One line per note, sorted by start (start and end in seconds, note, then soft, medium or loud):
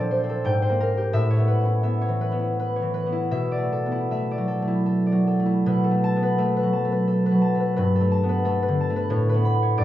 0.00 0.50 A#2 medium
0.00 0.49 F3 medium
0.00 0.23 C4 medium
0.00 0.28 A4 medium
0.00 0.49 D5 medium
0.00 0.49 A5 medium
0.11 0.61 C5 medium
0.24 1.16 C4 medium
0.29 0.49 A4 medium
0.45 1.16 G#2 medium
0.45 1.16 G5 medium
0.62 1.16 C5 medium
0.69 1.17 A#3 medium
0.80 1.17 A#4 medium
0.97 1.17 G4 medium
1.13 3.34 A2 medium
1.13 1.82 E5 loud
1.30 2.00 C#5 medium
1.39 1.82 B3 medium
1.48 2.20 B4 soft
1.61 2.01 C#4 soft
1.61 2.38 E4 medium
1.83 2.31 B3 medium
1.83 3.30 E5 medium
2.01 2.75 C#5 medium
2.09 2.81 E3 soft
2.21 2.58 B4 medium
2.32 3.05 B3 soft
2.39 3.11 E4 soft
2.60 2.93 B4 medium
2.76 5.72 C#5 medium
2.82 3.35 E3 soft
2.94 5.65 B4 medium
3.06 3.85 B3 soft
3.12 3.90 E4 soft
3.31 5.65 B2 medium
3.31 4.10 E5 medium
3.52 4.30 D5 medium
3.58 4.10 A3 soft
3.72 4.47 A4 soft
3.86 4.30 B3 soft
3.92 4.66 E4 medium
4.11 4.61 A3 medium
4.11 5.71 E5 medium
4.31 5.05 D5 medium
4.38 5.11 F#3 soft
4.48 4.85 A4 soft
4.62 5.38 A3 soft
4.68 5.44 E4 soft
4.86 5.26 A4 medium
5.06 8.96 D5 soft
5.12 6.62 F#3 soft
5.27 5.83 A4 soft
5.40 5.90 A3 soft
5.46 5.69 E4 soft
5.66 7.82 B2 medium
5.66 6.22 B4 medium
5.84 6.37 A4 medium
5.91 6.37 A3 medium
6.04 6.72 A5 medium
6.16 6.56 B3 soft
6.23 6.55 B4 medium
6.38 6.84 A3 medium
6.38 7.06 A4 medium
6.57 6.91 B4 medium
6.63 7.30 F#3 medium
6.73 7.40 A5 medium
6.85 7.54 A3 medium
6.92 7.25 B4 medium
7.08 7.39 A4 medium
7.26 7.59 B4 medium
7.31 7.81 F#3 medium
7.42 8.10 A5 medium
7.55 8.00 A3 medium
7.60 7.75 B4 medium
7.76 9.15 G2 medium
7.76 8.28 B4 medium
7.95 8.44 A4 medium
8.01 8.44 A3 medium
8.12 8.79 A5 medium
8.23 8.61 B3 soft
8.29 8.61 B4 medium
8.45 8.89 A3 medium
8.45 9.84 A4 medium
8.63 8.95 B4 medium
8.68 9.16 D3 medium
8.81 9.84 A5 medium
8.90 9.84 A3 medium
8.96 9.28 B4 medium
9.10 9.82 A2 medium
9.10 9.61 C#5 medium
9.29 9.83 B4 medium
9.34 9.83 B3 medium
9.45 9.83 B5 medium
9.62 9.83 C#5 medium
9.78 9.84 G2 medium
9.78 9.84 D5 medium